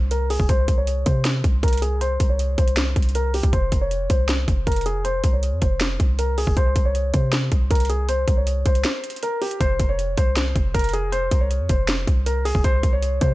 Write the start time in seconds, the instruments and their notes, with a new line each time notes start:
Already playing: 808-style bass C2
0.11 grand piano A#4, closed hi-hat
0.30 grand piano G#4, open hi-hat
0.40 808-style bass F1, kick
0.49 808-style bass C2, grand piano C5, kick, closed hi-hat
0.68 808-style bass C2, kick, closed hi-hat
0.78 grand piano C#5
0.87 closed hi-hat
1.06 808-style bass C3, grand piano C5, kick, closed hi-hat
1.25 snare, closed hi-hat
1.44 808-style bass C2, kick, closed hi-hat
1.63 808-style bass C2, grand piano A#4, kick, closed hi-hat
1.68 closed hi-hat
1.73 closed hi-hat
1.77 closed hi-hat
1.82 grand piano G#4, closed hi-hat
2.01 grand piano C5, closed hi-hat
2.20 808-style bass C2, kick, closed hi-hat
2.29 grand piano C#5
2.39 closed hi-hat
2.58 808-style bass C2, grand piano C5, kick, closed hi-hat
2.68 closed hi-hat
2.77 snare, closed hi-hat
2.96 808-style bass C2, kick, closed hi-hat
3.02 closed hi-hat
3.09 closed hi-hat
3.15 grand piano A#4, closed hi-hat
3.34 grand piano G4, closed hi-hat, open hi-hat
3.43 808-style bass C2, kick, closed hi-hat
3.53 808-style bass F1, grand piano C5, kick, closed hi-hat
3.72 808-style bass F1, kick, closed hi-hat
3.81 grand piano C#5
3.91 closed hi-hat
4.10 808-style bass C2, grand piano C5, kick, closed hi-hat
4.29 snare, closed hi-hat
4.48 808-style bass F1, kick, closed hi-hat
4.67 808-style bass F1, grand piano A#4, kick, closed hi-hat
4.72 closed hi-hat
4.76 closed hi-hat
4.81 closed hi-hat
4.86 grand piano G#4, closed hi-hat
5.05 grand piano C5, closed hi-hat
5.24 808-style bass C2, kick, closed hi-hat
5.33 grand piano C#5
5.43 closed hi-hat
5.52 808-style bass F2
5.62 808-style bass F1, grand piano C5, kick, closed hi-hat
5.81 snare, closed hi-hat
6.00 808-style bass C2, kick, closed hi-hat
6.19 grand piano A#4, closed hi-hat
6.38 grand piano G#4, open hi-hat
6.47 808-style bass F1, kick
6.57 808-style bass C2, grand piano C5, kick, closed hi-hat
6.76 808-style bass C2, kick, closed hi-hat
6.85 grand piano C#5
6.95 closed hi-hat
7.14 808-style bass C3, grand piano C5, kick, closed hi-hat
7.33 snare, closed hi-hat
7.52 808-style bass C2, kick, closed hi-hat
7.71 808-style bass C2, grand piano A#4, kick, closed hi-hat
7.75 closed hi-hat
7.80 closed hi-hat
7.85 closed hi-hat
7.90 grand piano G#4, closed hi-hat
8.09 grand piano C5, closed hi-hat
8.28 808-style bass C2, kick, closed hi-hat
8.37 grand piano C#5
8.47 closed hi-hat
8.66 808-style bass C2, grand piano C5, kick, closed hi-hat
8.75 closed hi-hat
8.85 snare, closed hi-hat
9.04 closed hi-hat
9.10 closed hi-hat
9.16 closed hi-hat
9.23 grand piano A#4, closed hi-hat
9.42 grand piano G4, closed hi-hat, open hi-hat
9.51 closed hi-hat
9.61 808-style bass F1, grand piano C5, kick, closed hi-hat
9.80 808-style bass F1, kick, closed hi-hat
9.89 grand piano C#5
9.99 closed hi-hat
10.17 808-style bass C2, grand piano C5, kick, closed hi-hat
10.37 snare, closed hi-hat
10.56 808-style bass F1, kick, closed hi-hat
10.74 808-style bass F1, grand piano A#4, kick, closed hi-hat
10.79 closed hi-hat
10.84 closed hi-hat
10.89 closed hi-hat
10.93 grand piano G#4, closed hi-hat
11.12 grand piano C5, closed hi-hat
11.31 808-style bass C2, kick, closed hi-hat
11.41 grand piano C#5
11.51 closed hi-hat
11.60 808-style bass F2
11.69 808-style bass F1, grand piano C5, kick, closed hi-hat
11.88 snare, closed hi-hat
12.07 808-style bass C2, kick, closed hi-hat
12.26 grand piano A#4, closed hi-hat
12.45 grand piano G#4, open hi-hat
12.55 808-style bass F1, kick
12.64 808-style bass C2, grand piano C5, kick, closed hi-hat
12.83 808-style bass C2, kick, closed hi-hat
12.93 grand piano C#5
13.03 closed hi-hat
13.21 808-style bass C3, grand piano C5, kick, closed hi-hat